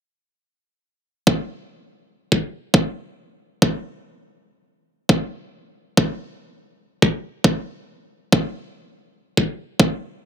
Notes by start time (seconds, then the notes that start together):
1.27 kick
2.32 kick
2.74 kick
3.62 kick
5.09 kick
5.97 kick
7.02 kick
7.44 kick
8.32 kick
9.37 kick
9.80 kick